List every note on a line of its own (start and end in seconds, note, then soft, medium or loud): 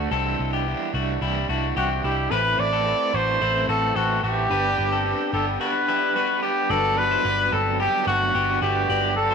0.00 0.12 A3 soft
0.00 0.12 A3 medium
0.00 0.11 D4 soft
0.00 0.11 F#4 medium
0.00 0.11 F#4 soft
0.11 0.34 C2 medium
0.11 0.39 C3 medium
0.11 0.39 E3 medium
0.11 0.39 G3 medium
0.11 0.51 C4 medium
0.11 0.38 D4 medium
0.11 0.37 E4 medium
0.11 0.50 A4 loud
0.38 0.73 C2 medium
0.38 0.65 G3 soft
0.38 0.66 D4 medium
0.38 0.66 E4 medium
0.53 0.92 B3 medium
0.53 0.92 G4 medium
0.66 0.93 E3 medium
0.66 0.94 G3 medium
0.66 0.93 D4 medium
0.66 0.92 E4 medium
0.93 1.16 C2 medium
0.93 1.21 G3 soft
0.93 1.22 A3 soft
0.93 1.21 D4 medium
0.93 1.21 E4 medium
0.93 1.22 F#4 medium
1.21 1.44 C2 medium
1.21 1.49 C3 medium
1.21 1.49 E3 medium
1.21 1.49 G3 medium
1.21 1.50 G3 medium
1.21 1.48 D4 medium
1.21 1.49 E4 medium
1.21 1.47 E4 medium
1.48 1.71 C2 medium
1.48 1.75 G3 soft
1.48 1.77 A3 medium
1.48 1.75 D4 soft
1.48 1.76 E4 medium
1.48 1.76 F#4 medium
1.75 1.99 C2 medium
1.75 2.03 E3 medium
1.75 2.04 G3 medium
1.75 2.04 C4 medium
1.75 2.03 D4 medium
1.75 2.01 E4 medium
1.75 1.89 F#4 medium
1.75 2.04 G4 medium
2.02 2.26 C2 medium
2.02 2.32 G3 medium
2.02 2.31 G3 soft
2.02 2.31 D4 soft
2.02 2.31 E4 soft
2.02 2.31 E4 medium
2.02 2.33 G4 medium
2.30 2.54 A1 loud
2.30 2.58 A2 medium
2.30 2.58 E3 medium
2.30 2.59 A3 medium
2.30 4.46 C4 medium
2.30 2.59 C4 medium
2.30 2.58 E4 medium
2.30 2.71 E4 medium
2.30 4.47 A4 medium
2.30 2.70 B4 medium
2.30 2.61 B4 loud
2.30 2.57 B4 medium
2.30 4.48 C5 medium
2.58 2.93 A1 medium
2.58 2.84 A3 soft
2.58 2.85 C4 soft
2.58 2.86 E4 medium
2.58 2.86 B4 medium
2.58 3.17 D5 loud
2.73 3.12 C4 medium
2.73 3.11 A4 medium
2.85 3.13 A3 medium
2.85 3.13 C4 medium
2.85 3.12 E4 medium
2.85 3.12 B4 medium
3.13 3.36 A1 medium
3.13 3.41 A3 soft
3.13 3.40 A3 soft
3.13 3.40 C4 soft
3.13 3.40 E4 soft
3.13 3.41 F#4 medium
3.13 3.41 B4 medium
3.13 3.68 C5 loud
3.40 3.64 A1 medium
3.40 3.68 A2 medium
3.40 3.68 E3 medium
3.40 3.69 A3 medium
3.40 3.68 C4 medium
3.40 3.67 E4 medium
3.40 3.68 E4 medium
3.40 3.66 B4 medium
3.68 3.91 A1 medium
3.68 3.97 A3 medium
3.68 3.94 A3 soft
3.68 3.95 C4 soft
3.68 3.96 E4 soft
3.68 3.96 F#4 medium
3.68 3.98 A4 loud
3.68 3.96 B4 medium
3.95 4.18 A1 medium
3.95 4.23 A3 medium
3.95 4.23 C4 medium
3.95 4.24 C4 medium
3.95 4.22 E4 medium
3.95 4.23 F#4 medium
3.95 4.24 A4 medium
3.95 4.21 B4 medium
4.23 4.46 A1 loud
4.23 4.50 A3 soft
4.23 4.51 A3 medium
4.23 4.51 C4 soft
4.23 4.51 E4 soft
4.23 4.50 F#4 medium
4.23 5.29 G4 loud
4.23 4.51 B4 soft
4.50 4.73 G1 loud
4.50 4.78 G2 medium
4.50 4.78 D3 medium
4.50 4.78 G3 medium
4.50 4.79 B3 medium
4.50 5.85 D4 medium
4.50 4.90 D4 medium
4.50 4.78 D4 medium
4.50 5.85 G4 medium
4.50 4.77 G4 medium
4.50 4.90 B4 loud
4.50 5.86 B4 medium
4.78 5.12 G1 loud
4.78 5.04 G3 soft
4.78 5.05 B3 medium
4.78 5.06 D4 medium
4.78 5.06 G4 medium
4.92 5.31 C4 medium
4.92 5.31 A4 medium
5.05 5.33 G3 medium
5.05 5.33 B3 medium
5.05 5.32 D4 medium
5.05 5.31 G4 medium
5.32 5.56 G1 loud
5.32 5.60 G3 soft
5.32 5.60 B3 soft
5.32 5.60 B3 medium
5.32 5.60 D4 soft
5.32 5.60 G4 medium
5.32 5.46 A4 medium
5.60 5.88 G2 medium
5.60 5.88 D3 medium
5.60 5.88 G3 medium
5.60 5.88 B3 medium
5.60 5.89 B3 medium
5.60 5.87 D4 medium
5.60 5.88 F#4 medium
5.60 5.86 G4 medium
5.60 6.39 B4 medium
5.87 6.16 G3 medium
5.87 6.14 G3 soft
5.87 6.15 B3 soft
5.87 6.70 D4 soft
5.87 6.16 D4 soft
5.87 6.16 E4 medium
5.87 6.15 G4 soft
5.87 6.71 G4 soft
5.87 6.71 B4 medium
6.15 6.43 G3 medium
6.15 6.43 B3 medium
6.15 6.42 B3 medium
6.15 6.42 D4 medium
6.15 6.42 F#4 medium
6.15 6.41 G4 medium
6.42 6.71 G3 soft
6.42 6.71 B3 medium
6.42 6.70 B3 soft
6.42 6.70 D4 soft
6.42 6.70 G4 medium
6.42 6.72 G4 medium
6.69 7.15 G1 loud
6.69 6.98 G2 medium
6.69 6.98 D3 medium
6.69 6.98 F#3 medium
6.69 8.86 G3 medium
6.69 6.97 B3 medium
6.69 6.96 D4 medium
6.69 8.85 F#4 medium
6.69 7.10 F#4 medium
6.69 6.99 A4 loud
6.69 8.86 B4 medium
6.69 7.09 D5 medium
6.97 7.24 F#3 soft
6.97 7.25 B3 medium
6.97 7.25 D4 medium
6.97 7.55 B4 loud
7.11 7.25 E4 medium
7.11 7.24 C5 medium
7.24 7.48 G1 medium
7.24 7.52 D3 medium
7.24 7.53 F#3 medium
7.24 7.52 B3 medium
7.24 7.52 D4 medium
7.24 7.51 D4 medium
7.24 7.52 B4 medium
7.52 7.86 G1 medium
7.52 7.80 F#3 soft
7.52 7.80 B3 soft
7.52 7.80 C4 medium
7.52 7.80 D4 soft
7.52 7.79 A4 medium
7.52 7.80 A4 medium
7.80 8.07 G2 medium
7.80 8.07 D3 medium
7.80 8.08 F#3 medium
7.80 8.08 B3 medium
7.80 8.07 B3 medium
7.80 8.05 D4 medium
7.80 8.07 G4 medium
7.80 8.06 G4 loud
8.07 8.30 G1 loud
8.07 8.34 F#3 soft
8.07 8.35 A3 medium
8.07 8.35 B3 soft
8.07 8.34 D4 soft
8.07 8.58 F#4 loud
8.07 8.34 F#4 medium
8.35 8.57 G1 medium
8.35 8.62 D3 medium
8.35 8.62 F#3 medium
8.35 8.63 B3 medium
8.35 8.61 B3 medium
8.35 8.60 D4 medium
8.35 8.61 G4 medium
8.61 8.84 G1 loud
8.61 8.90 F#3 soft
8.61 8.90 A3 medium
8.61 8.90 B3 soft
8.61 8.89 D4 soft
8.61 8.89 F#4 medium
8.61 9.13 G4 medium
8.88 9.34 G1 medium
8.88 9.17 G2 medium
8.88 9.17 D3 medium
8.88 9.18 F#3 medium
8.88 9.16 B3 medium
8.88 9.15 D4 medium
8.88 9.35 F#4 medium
8.88 9.29 F#4 medium
8.88 9.35 G4 medium
8.88 9.35 B4 medium
8.88 9.28 D5 medium
9.16 9.35 F#3 soft
9.16 9.35 B3 soft
9.16 9.35 D4 medium
9.16 9.35 A4 loud
9.31 9.35 C5 medium